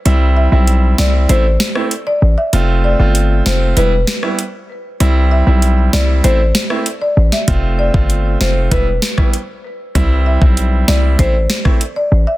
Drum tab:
HH |x---x---x---x---|x---x---x---x---|x---x---x---x---|x---x---x---x---|
SD |------o---or----|------o---or----|------o---or---o|------o---or----|
BD |----------------|----------------|----------------|o--o----o--o----|

HH |x---x---x---x---|
SD |------o---or----|
BD |o--o----o--o----|